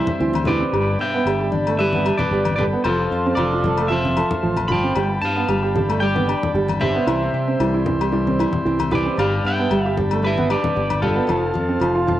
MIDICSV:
0, 0, Header, 1, 8, 480
1, 0, Start_track
1, 0, Tempo, 527704
1, 665, Time_signature, 4, 2, 24, 8
1, 11095, End_track
2, 0, Start_track
2, 0, Title_t, "Transistor combo organ"
2, 0, Program_c, 0, 18
2, 0, Note_on_c, 0, 76, 64
2, 0, Note_on_c, 0, 79, 60
2, 0, Note_on_c, 0, 84, 75
2, 645, Note_off_c, 0, 76, 0
2, 645, Note_off_c, 0, 84, 0
2, 654, Note_on_c, 0, 83, 70
2, 656, Note_on_c, 0, 81, 59
2, 2556, Note_off_c, 0, 79, 0
2, 2565, Note_off_c, 0, 83, 0
2, 2589, Note_on_c, 0, 65, 63
2, 2593, Note_on_c, 0, 84, 69
2, 4492, Note_off_c, 0, 65, 0
2, 4494, Note_off_c, 0, 84, 0
2, 4497, Note_on_c, 0, 79, 62
2, 4502, Note_on_c, 0, 83, 75
2, 6390, Note_off_c, 0, 81, 0
2, 6407, Note_off_c, 0, 83, 0
2, 6419, Note_on_c, 0, 84, 74
2, 6424, Note_on_c, 0, 76, 66
2, 8324, Note_off_c, 0, 84, 0
2, 8327, Note_off_c, 0, 76, 0
2, 8341, Note_on_c, 0, 83, 70
2, 8343, Note_on_c, 0, 81, 60
2, 10223, Note_off_c, 0, 79, 0
2, 10244, Note_off_c, 0, 83, 0
2, 10275, Note_on_c, 0, 77, 67
2, 10275, Note_on_c, 0, 84, 73
2, 11095, Note_off_c, 0, 77, 0
2, 11095, Note_off_c, 0, 81, 0
2, 11095, Note_off_c, 0, 84, 0
2, 11095, End_track
3, 0, Start_track
3, 0, Title_t, "Clean electric guitar"
3, 0, Program_c, 1, 27
3, 0, Note_on_c, 1, 72, 72
3, 0, Note_on_c, 1, 76, 89
3, 387, Note_off_c, 1, 72, 0
3, 429, Note_on_c, 1, 71, 73
3, 435, Note_on_c, 1, 74, 94
3, 447, Note_off_c, 1, 76, 0
3, 875, Note_off_c, 1, 71, 0
3, 915, Note_off_c, 1, 74, 0
3, 918, Note_on_c, 1, 76, 77
3, 921, Note_on_c, 1, 79, 91
3, 1360, Note_off_c, 1, 79, 0
3, 1361, Note_off_c, 1, 76, 0
3, 1627, Note_on_c, 1, 76, 91
3, 1641, Note_on_c, 1, 71, 69
3, 1975, Note_off_c, 1, 71, 0
3, 1979, Note_on_c, 1, 74, 81
3, 1994, Note_on_c, 1, 71, 63
3, 2007, Note_off_c, 1, 76, 0
3, 2315, Note_off_c, 1, 74, 0
3, 2323, Note_off_c, 1, 71, 0
3, 2326, Note_on_c, 1, 74, 79
3, 2347, Note_on_c, 1, 71, 63
3, 2394, Note_off_c, 1, 74, 0
3, 2413, Note_off_c, 1, 71, 0
3, 2583, Note_on_c, 1, 72, 88
3, 2598, Note_on_c, 1, 69, 71
3, 3042, Note_off_c, 1, 69, 0
3, 3045, Note_off_c, 1, 72, 0
3, 3048, Note_on_c, 1, 74, 94
3, 3075, Note_on_c, 1, 69, 70
3, 3520, Note_off_c, 1, 69, 0
3, 3532, Note_on_c, 1, 76, 93
3, 3555, Note_off_c, 1, 74, 0
3, 3565, Note_on_c, 1, 72, 74
3, 4242, Note_off_c, 1, 72, 0
3, 4254, Note_off_c, 1, 76, 0
3, 4258, Note_on_c, 1, 83, 107
3, 4291, Note_on_c, 1, 79, 81
3, 4729, Note_off_c, 1, 79, 0
3, 4741, Note_off_c, 1, 83, 0
3, 4744, Note_on_c, 1, 81, 99
3, 4775, Note_on_c, 1, 77, 80
3, 5432, Note_off_c, 1, 81, 0
3, 5447, Note_off_c, 1, 77, 0
3, 5459, Note_on_c, 1, 79, 88
3, 5480, Note_on_c, 1, 74, 69
3, 5911, Note_off_c, 1, 79, 0
3, 5922, Note_off_c, 1, 74, 0
3, 6191, Note_on_c, 1, 76, 97
3, 6192, Note_on_c, 1, 72, 86
3, 7113, Note_off_c, 1, 76, 0
3, 7115, Note_off_c, 1, 72, 0
3, 8114, Note_on_c, 1, 71, 61
3, 8140, Note_on_c, 1, 74, 80
3, 8335, Note_off_c, 1, 71, 0
3, 8348, Note_off_c, 1, 74, 0
3, 8359, Note_on_c, 1, 74, 82
3, 8363, Note_on_c, 1, 77, 96
3, 8577, Note_off_c, 1, 74, 0
3, 8603, Note_off_c, 1, 77, 0
3, 8609, Note_on_c, 1, 79, 104
3, 8616, Note_on_c, 1, 76, 78
3, 9045, Note_off_c, 1, 79, 0
3, 9049, Note_off_c, 1, 76, 0
3, 9318, Note_on_c, 1, 71, 84
3, 9338, Note_on_c, 1, 76, 109
3, 9537, Note_off_c, 1, 71, 0
3, 9556, Note_on_c, 1, 71, 79
3, 9561, Note_off_c, 1, 76, 0
3, 9564, Note_on_c, 1, 74, 94
3, 9998, Note_off_c, 1, 71, 0
3, 10003, Note_off_c, 1, 74, 0
3, 10023, Note_on_c, 1, 65, 69
3, 10026, Note_on_c, 1, 69, 83
3, 11095, Note_off_c, 1, 65, 0
3, 11095, Note_off_c, 1, 69, 0
3, 11095, End_track
4, 0, Start_track
4, 0, Title_t, "Nylon-string guitar"
4, 0, Program_c, 2, 24
4, 0, Note_on_c, 2, 48, 72
4, 0, Note_on_c, 2, 55, 68
4, 0, Note_on_c, 2, 60, 55
4, 0, Note_on_c, 2, 64, 61
4, 174, Note_off_c, 2, 60, 0
4, 185, Note_on_c, 2, 60, 62
4, 419, Note_on_c, 2, 67, 67
4, 636, Note_off_c, 2, 64, 0
4, 637, Note_off_c, 2, 55, 0
4, 639, Note_off_c, 2, 60, 0
4, 660, Note_off_c, 2, 48, 0
4, 667, Note_on_c, 2, 43, 77
4, 901, Note_on_c, 2, 59, 58
4, 1151, Note_on_c, 2, 55, 66
4, 1383, Note_on_c, 2, 62, 59
4, 1616, Note_off_c, 2, 55, 0
4, 1627, Note_on_c, 2, 55, 70
4, 1867, Note_off_c, 2, 62, 0
4, 1883, Note_on_c, 2, 62, 64
4, 2107, Note_off_c, 2, 59, 0
4, 2126, Note_on_c, 2, 59, 61
4, 2347, Note_off_c, 2, 67, 0
4, 2361, Note_on_c, 2, 69, 62
4, 2562, Note_off_c, 2, 55, 0
4, 2571, Note_off_c, 2, 59, 0
4, 2591, Note_off_c, 2, 43, 0
4, 2592, Note_on_c, 2, 53, 76
4, 2597, Note_off_c, 2, 62, 0
4, 2839, Note_on_c, 2, 65, 59
4, 3073, Note_on_c, 2, 60, 62
4, 3320, Note_off_c, 2, 69, 0
4, 3324, Note_on_c, 2, 69, 66
4, 3539, Note_off_c, 2, 60, 0
4, 3550, Note_on_c, 2, 60, 66
4, 3787, Note_off_c, 2, 69, 0
4, 3798, Note_on_c, 2, 69, 68
4, 4266, Note_off_c, 2, 53, 0
4, 4277, Note_on_c, 2, 53, 61
4, 4484, Note_off_c, 2, 60, 0
4, 4488, Note_off_c, 2, 69, 0
4, 4490, Note_off_c, 2, 65, 0
4, 4514, Note_off_c, 2, 53, 0
4, 4520, Note_on_c, 2, 43, 70
4, 4759, Note_on_c, 2, 59, 59
4, 5001, Note_on_c, 2, 55, 63
4, 5239, Note_on_c, 2, 62, 60
4, 5465, Note_off_c, 2, 55, 0
4, 5469, Note_on_c, 2, 55, 68
4, 5710, Note_off_c, 2, 62, 0
4, 5721, Note_on_c, 2, 62, 67
4, 5954, Note_off_c, 2, 43, 0
4, 6181, Note_on_c, 2, 47, 64
4, 6408, Note_off_c, 2, 59, 0
4, 6426, Note_off_c, 2, 47, 0
4, 6436, Note_off_c, 2, 62, 0
4, 6436, Note_on_c, 2, 48, 72
4, 6676, Note_on_c, 2, 60, 57
4, 6912, Note_off_c, 2, 55, 0
4, 6915, Note_on_c, 2, 55, 65
4, 7384, Note_off_c, 2, 55, 0
4, 7388, Note_on_c, 2, 55, 65
4, 7633, Note_on_c, 2, 64, 64
4, 7867, Note_off_c, 2, 60, 0
4, 7878, Note_on_c, 2, 60, 66
4, 8120, Note_on_c, 2, 67, 68
4, 8321, Note_off_c, 2, 55, 0
4, 8324, Note_off_c, 2, 64, 0
4, 8327, Note_off_c, 2, 60, 0
4, 8341, Note_on_c, 2, 43, 71
4, 8352, Note_off_c, 2, 48, 0
4, 8594, Note_on_c, 2, 59, 62
4, 8827, Note_on_c, 2, 55, 70
4, 9073, Note_on_c, 2, 62, 63
4, 9289, Note_off_c, 2, 55, 0
4, 9300, Note_on_c, 2, 55, 65
4, 9540, Note_off_c, 2, 62, 0
4, 9551, Note_on_c, 2, 62, 62
4, 9779, Note_off_c, 2, 59, 0
4, 9790, Note_on_c, 2, 59, 61
4, 10024, Note_off_c, 2, 62, 0
4, 10035, Note_on_c, 2, 62, 58
4, 10236, Note_off_c, 2, 55, 0
4, 10241, Note_off_c, 2, 59, 0
4, 10252, Note_on_c, 2, 53, 78
4, 10263, Note_off_c, 2, 43, 0
4, 10271, Note_off_c, 2, 62, 0
4, 10272, Note_off_c, 2, 67, 0
4, 10495, Note_on_c, 2, 65, 60
4, 10972, Note_off_c, 2, 65, 0
4, 10983, Note_on_c, 2, 65, 62
4, 11095, Note_off_c, 2, 53, 0
4, 11095, Note_off_c, 2, 65, 0
4, 11095, End_track
5, 0, Start_track
5, 0, Title_t, "Felt piano"
5, 0, Program_c, 3, 0
5, 186, Note_on_c, 3, 52, 77
5, 297, Note_off_c, 3, 52, 0
5, 434, Note_on_c, 3, 52, 76
5, 541, Note_off_c, 3, 52, 0
5, 550, Note_on_c, 3, 60, 74
5, 649, Note_off_c, 3, 60, 0
5, 667, Note_on_c, 3, 55, 90
5, 778, Note_off_c, 3, 55, 0
5, 1039, Note_on_c, 3, 59, 78
5, 1135, Note_off_c, 3, 59, 0
5, 1151, Note_on_c, 3, 55, 83
5, 1261, Note_off_c, 3, 55, 0
5, 1277, Note_on_c, 3, 67, 76
5, 1374, Note_off_c, 3, 67, 0
5, 1524, Note_on_c, 3, 57, 76
5, 1619, Note_off_c, 3, 57, 0
5, 1639, Note_on_c, 3, 55, 84
5, 1746, Note_off_c, 3, 55, 0
5, 1772, Note_on_c, 3, 59, 78
5, 1863, Note_off_c, 3, 59, 0
5, 1872, Note_on_c, 3, 55, 72
5, 1982, Note_off_c, 3, 55, 0
5, 2111, Note_on_c, 3, 55, 80
5, 2222, Note_off_c, 3, 55, 0
5, 2361, Note_on_c, 3, 55, 79
5, 2467, Note_off_c, 3, 55, 0
5, 2483, Note_on_c, 3, 59, 79
5, 2579, Note_off_c, 3, 59, 0
5, 2603, Note_on_c, 3, 53, 53
5, 2709, Note_off_c, 3, 53, 0
5, 2966, Note_on_c, 3, 60, 78
5, 3061, Note_off_c, 3, 60, 0
5, 3078, Note_on_c, 3, 53, 81
5, 3187, Note_off_c, 3, 53, 0
5, 3203, Note_on_c, 3, 65, 72
5, 3299, Note_off_c, 3, 65, 0
5, 3319, Note_on_c, 3, 53, 73
5, 3427, Note_off_c, 3, 53, 0
5, 3447, Note_on_c, 3, 57, 72
5, 3541, Note_off_c, 3, 57, 0
5, 3548, Note_on_c, 3, 53, 83
5, 3661, Note_off_c, 3, 53, 0
5, 3677, Note_on_c, 3, 60, 73
5, 3776, Note_off_c, 3, 60, 0
5, 3789, Note_on_c, 3, 53, 71
5, 3901, Note_off_c, 3, 53, 0
5, 4027, Note_on_c, 3, 53, 74
5, 4141, Note_off_c, 3, 53, 0
5, 4276, Note_on_c, 3, 53, 75
5, 4386, Note_off_c, 3, 53, 0
5, 4398, Note_on_c, 3, 60, 73
5, 4497, Note_off_c, 3, 60, 0
5, 4512, Note_on_c, 3, 55, 87
5, 4623, Note_off_c, 3, 55, 0
5, 4881, Note_on_c, 3, 59, 72
5, 4978, Note_off_c, 3, 59, 0
5, 4991, Note_on_c, 3, 55, 79
5, 5103, Note_off_c, 3, 55, 0
5, 5118, Note_on_c, 3, 67, 76
5, 5217, Note_off_c, 3, 67, 0
5, 5229, Note_on_c, 3, 55, 74
5, 5342, Note_off_c, 3, 55, 0
5, 5354, Note_on_c, 3, 57, 74
5, 5454, Note_off_c, 3, 57, 0
5, 5461, Note_on_c, 3, 55, 82
5, 5577, Note_off_c, 3, 55, 0
5, 5591, Note_on_c, 3, 59, 74
5, 5693, Note_off_c, 3, 59, 0
5, 5710, Note_on_c, 3, 55, 76
5, 5822, Note_off_c, 3, 55, 0
5, 5956, Note_on_c, 3, 55, 81
5, 6066, Note_off_c, 3, 55, 0
5, 6199, Note_on_c, 3, 55, 74
5, 6307, Note_off_c, 3, 55, 0
5, 6322, Note_on_c, 3, 59, 77
5, 6419, Note_off_c, 3, 59, 0
5, 6432, Note_on_c, 3, 52, 91
5, 6543, Note_off_c, 3, 52, 0
5, 6801, Note_on_c, 3, 60, 76
5, 6898, Note_off_c, 3, 60, 0
5, 6916, Note_on_c, 3, 52, 80
5, 7025, Note_off_c, 3, 52, 0
5, 7042, Note_on_c, 3, 64, 79
5, 7139, Note_off_c, 3, 64, 0
5, 7152, Note_on_c, 3, 52, 76
5, 7263, Note_off_c, 3, 52, 0
5, 7281, Note_on_c, 3, 55, 73
5, 7378, Note_off_c, 3, 55, 0
5, 7391, Note_on_c, 3, 52, 79
5, 7502, Note_off_c, 3, 52, 0
5, 7523, Note_on_c, 3, 60, 78
5, 7619, Note_off_c, 3, 60, 0
5, 7638, Note_on_c, 3, 52, 78
5, 7746, Note_off_c, 3, 52, 0
5, 7873, Note_on_c, 3, 52, 82
5, 7983, Note_off_c, 3, 52, 0
5, 8110, Note_on_c, 3, 52, 80
5, 8221, Note_off_c, 3, 52, 0
5, 8239, Note_on_c, 3, 60, 76
5, 8336, Note_off_c, 3, 60, 0
5, 8356, Note_on_c, 3, 55, 88
5, 8464, Note_off_c, 3, 55, 0
5, 8726, Note_on_c, 3, 59, 80
5, 8819, Note_off_c, 3, 59, 0
5, 8839, Note_on_c, 3, 55, 81
5, 8946, Note_off_c, 3, 55, 0
5, 8966, Note_on_c, 3, 67, 82
5, 9060, Note_off_c, 3, 67, 0
5, 9080, Note_on_c, 3, 55, 72
5, 9186, Note_off_c, 3, 55, 0
5, 9207, Note_on_c, 3, 57, 75
5, 9300, Note_off_c, 3, 57, 0
5, 9309, Note_on_c, 3, 55, 81
5, 9420, Note_off_c, 3, 55, 0
5, 9443, Note_on_c, 3, 59, 78
5, 9538, Note_off_c, 3, 59, 0
5, 9547, Note_on_c, 3, 55, 75
5, 9659, Note_off_c, 3, 55, 0
5, 9787, Note_on_c, 3, 55, 50
5, 9899, Note_off_c, 3, 55, 0
5, 10026, Note_on_c, 3, 55, 79
5, 10138, Note_off_c, 3, 55, 0
5, 10148, Note_on_c, 3, 59, 74
5, 10249, Note_off_c, 3, 59, 0
5, 10266, Note_on_c, 3, 53, 92
5, 10378, Note_off_c, 3, 53, 0
5, 10632, Note_on_c, 3, 60, 75
5, 10731, Note_off_c, 3, 60, 0
5, 10743, Note_on_c, 3, 53, 84
5, 10856, Note_off_c, 3, 53, 0
5, 10871, Note_on_c, 3, 65, 81
5, 10970, Note_off_c, 3, 65, 0
5, 10979, Note_on_c, 3, 53, 74
5, 11094, Note_off_c, 3, 53, 0
5, 11095, End_track
6, 0, Start_track
6, 0, Title_t, "Fingered electric bass"
6, 0, Program_c, 4, 33
6, 181, Note_on_c, 4, 38, 90
6, 568, Note_off_c, 4, 38, 0
6, 663, Note_on_c, 4, 31, 100
6, 857, Note_off_c, 4, 31, 0
6, 898, Note_on_c, 4, 43, 91
6, 1094, Note_off_c, 4, 43, 0
6, 1141, Note_on_c, 4, 31, 93
6, 1914, Note_off_c, 4, 31, 0
6, 2102, Note_on_c, 4, 31, 88
6, 2490, Note_off_c, 4, 31, 0
6, 2590, Note_on_c, 4, 29, 90
6, 2783, Note_off_c, 4, 29, 0
6, 2826, Note_on_c, 4, 41, 89
6, 3020, Note_off_c, 4, 41, 0
6, 3065, Note_on_c, 4, 29, 100
6, 3837, Note_off_c, 4, 29, 0
6, 4033, Note_on_c, 4, 33, 79
6, 4249, Note_off_c, 4, 33, 0
6, 4265, Note_on_c, 4, 31, 84
6, 4484, Note_off_c, 4, 31, 0
6, 4514, Note_on_c, 4, 31, 98
6, 4706, Note_off_c, 4, 31, 0
6, 4748, Note_on_c, 4, 43, 84
6, 4942, Note_off_c, 4, 43, 0
6, 4989, Note_on_c, 4, 31, 102
6, 5759, Note_off_c, 4, 31, 0
6, 5950, Note_on_c, 4, 31, 88
6, 6335, Note_off_c, 4, 31, 0
6, 6427, Note_on_c, 4, 36, 94
6, 6621, Note_off_c, 4, 36, 0
6, 6670, Note_on_c, 4, 48, 86
6, 6862, Note_off_c, 4, 48, 0
6, 6911, Note_on_c, 4, 36, 104
6, 7679, Note_off_c, 4, 36, 0
6, 7872, Note_on_c, 4, 36, 86
6, 8255, Note_off_c, 4, 36, 0
6, 8348, Note_on_c, 4, 31, 103
6, 8540, Note_off_c, 4, 31, 0
6, 8589, Note_on_c, 4, 43, 92
6, 8781, Note_off_c, 4, 43, 0
6, 8831, Note_on_c, 4, 31, 103
6, 9598, Note_off_c, 4, 31, 0
6, 9794, Note_on_c, 4, 31, 93
6, 10176, Note_off_c, 4, 31, 0
6, 10276, Note_on_c, 4, 29, 99
6, 10465, Note_off_c, 4, 29, 0
6, 10513, Note_on_c, 4, 41, 90
6, 10702, Note_off_c, 4, 41, 0
6, 10742, Note_on_c, 4, 29, 95
6, 11095, Note_off_c, 4, 29, 0
6, 11095, End_track
7, 0, Start_track
7, 0, Title_t, "Muted nylon-string guitar strokes"
7, 5958, Note_on_c, 9, 29, 63
7, 6049, Note_off_c, 9, 29, 0
7, 7147, Note_on_c, 9, 29, 62
7, 7238, Note_off_c, 9, 29, 0
7, 10733, Note_on_c, 9, 29, 66
7, 10824, Note_off_c, 9, 29, 0
7, 11095, End_track
8, 0, Start_track
8, 0, Title_t, "Drums"
8, 63, Note_on_c, 9, 63, 77
8, 63, Note_on_c, 9, 64, 71
8, 154, Note_off_c, 9, 63, 0
8, 154, Note_off_c, 9, 64, 0
8, 304, Note_on_c, 9, 63, 75
8, 320, Note_on_c, 9, 68, 69
8, 395, Note_off_c, 9, 63, 0
8, 411, Note_off_c, 9, 68, 0
8, 411, Note_on_c, 9, 64, 81
8, 502, Note_off_c, 9, 64, 0
8, 670, Note_on_c, 9, 68, 70
8, 761, Note_off_c, 9, 68, 0
8, 1153, Note_on_c, 9, 68, 59
8, 1244, Note_off_c, 9, 68, 0
8, 1382, Note_on_c, 9, 63, 72
8, 1472, Note_off_c, 9, 63, 0
8, 1519, Note_on_c, 9, 68, 68
8, 1610, Note_off_c, 9, 68, 0
8, 1755, Note_on_c, 9, 63, 77
8, 1846, Note_off_c, 9, 63, 0
8, 1872, Note_on_c, 9, 68, 66
8, 1963, Note_off_c, 9, 68, 0
8, 1992, Note_on_c, 9, 63, 78
8, 1992, Note_on_c, 9, 64, 72
8, 2083, Note_off_c, 9, 63, 0
8, 2083, Note_off_c, 9, 64, 0
8, 2231, Note_on_c, 9, 68, 70
8, 2240, Note_on_c, 9, 63, 73
8, 2322, Note_off_c, 9, 68, 0
8, 2331, Note_off_c, 9, 63, 0
8, 2352, Note_on_c, 9, 64, 78
8, 2443, Note_off_c, 9, 64, 0
8, 2588, Note_on_c, 9, 68, 67
8, 2679, Note_off_c, 9, 68, 0
8, 3064, Note_on_c, 9, 68, 62
8, 3155, Note_off_c, 9, 68, 0
8, 3311, Note_on_c, 9, 63, 69
8, 3311, Note_on_c, 9, 64, 75
8, 3402, Note_off_c, 9, 63, 0
8, 3402, Note_off_c, 9, 64, 0
8, 3434, Note_on_c, 9, 68, 66
8, 3525, Note_off_c, 9, 68, 0
8, 3684, Note_on_c, 9, 63, 70
8, 3775, Note_off_c, 9, 63, 0
8, 3791, Note_on_c, 9, 68, 67
8, 3882, Note_off_c, 9, 68, 0
8, 3918, Note_on_c, 9, 63, 74
8, 3918, Note_on_c, 9, 64, 69
8, 4009, Note_off_c, 9, 63, 0
8, 4009, Note_off_c, 9, 64, 0
8, 4153, Note_on_c, 9, 63, 72
8, 4158, Note_on_c, 9, 68, 72
8, 4244, Note_off_c, 9, 63, 0
8, 4249, Note_off_c, 9, 68, 0
8, 4265, Note_on_c, 9, 64, 74
8, 4356, Note_off_c, 9, 64, 0
8, 4508, Note_on_c, 9, 68, 69
8, 4599, Note_off_c, 9, 68, 0
8, 4990, Note_on_c, 9, 68, 61
8, 5081, Note_off_c, 9, 68, 0
8, 5236, Note_on_c, 9, 63, 70
8, 5236, Note_on_c, 9, 64, 72
8, 5327, Note_off_c, 9, 63, 0
8, 5327, Note_off_c, 9, 64, 0
8, 5363, Note_on_c, 9, 68, 69
8, 5454, Note_off_c, 9, 68, 0
8, 5604, Note_on_c, 9, 63, 76
8, 5695, Note_off_c, 9, 63, 0
8, 5721, Note_on_c, 9, 68, 65
8, 5812, Note_off_c, 9, 68, 0
8, 5850, Note_on_c, 9, 63, 74
8, 5850, Note_on_c, 9, 64, 70
8, 5941, Note_off_c, 9, 63, 0
8, 5941, Note_off_c, 9, 64, 0
8, 6078, Note_on_c, 9, 63, 74
8, 6087, Note_on_c, 9, 68, 68
8, 6169, Note_off_c, 9, 63, 0
8, 6178, Note_off_c, 9, 68, 0
8, 6191, Note_on_c, 9, 64, 74
8, 6282, Note_off_c, 9, 64, 0
8, 6436, Note_on_c, 9, 68, 69
8, 6526, Note_off_c, 9, 68, 0
8, 6914, Note_on_c, 9, 68, 61
8, 7005, Note_off_c, 9, 68, 0
8, 7150, Note_on_c, 9, 63, 69
8, 7150, Note_on_c, 9, 64, 72
8, 7241, Note_off_c, 9, 63, 0
8, 7241, Note_off_c, 9, 64, 0
8, 7287, Note_on_c, 9, 68, 69
8, 7378, Note_off_c, 9, 68, 0
8, 7524, Note_on_c, 9, 63, 76
8, 7615, Note_off_c, 9, 63, 0
8, 7643, Note_on_c, 9, 68, 67
8, 7734, Note_off_c, 9, 68, 0
8, 7757, Note_on_c, 9, 63, 76
8, 7757, Note_on_c, 9, 64, 71
8, 7848, Note_off_c, 9, 63, 0
8, 7848, Note_off_c, 9, 64, 0
8, 7996, Note_on_c, 9, 63, 69
8, 8002, Note_on_c, 9, 68, 73
8, 8087, Note_off_c, 9, 63, 0
8, 8093, Note_off_c, 9, 68, 0
8, 8106, Note_on_c, 9, 64, 75
8, 8197, Note_off_c, 9, 64, 0
8, 8358, Note_on_c, 9, 68, 63
8, 8449, Note_off_c, 9, 68, 0
8, 8831, Note_on_c, 9, 68, 62
8, 8922, Note_off_c, 9, 68, 0
8, 9072, Note_on_c, 9, 63, 67
8, 9072, Note_on_c, 9, 64, 72
8, 9163, Note_off_c, 9, 63, 0
8, 9163, Note_off_c, 9, 64, 0
8, 9196, Note_on_c, 9, 68, 66
8, 9287, Note_off_c, 9, 68, 0
8, 9439, Note_on_c, 9, 63, 70
8, 9530, Note_off_c, 9, 63, 0
8, 9552, Note_on_c, 9, 68, 70
8, 9643, Note_off_c, 9, 68, 0
8, 9679, Note_on_c, 9, 63, 75
8, 9679, Note_on_c, 9, 64, 68
8, 9769, Note_off_c, 9, 63, 0
8, 9769, Note_off_c, 9, 64, 0
8, 9917, Note_on_c, 9, 68, 72
8, 9919, Note_on_c, 9, 63, 68
8, 10008, Note_off_c, 9, 68, 0
8, 10010, Note_off_c, 9, 63, 0
8, 10029, Note_on_c, 9, 64, 75
8, 10120, Note_off_c, 9, 64, 0
8, 10269, Note_on_c, 9, 68, 68
8, 10360, Note_off_c, 9, 68, 0
8, 10509, Note_on_c, 9, 63, 65
8, 10600, Note_off_c, 9, 63, 0
8, 10748, Note_on_c, 9, 68, 66
8, 10839, Note_off_c, 9, 68, 0
8, 10993, Note_on_c, 9, 63, 62
8, 10993, Note_on_c, 9, 64, 70
8, 11084, Note_off_c, 9, 63, 0
8, 11084, Note_off_c, 9, 64, 0
8, 11095, End_track
0, 0, End_of_file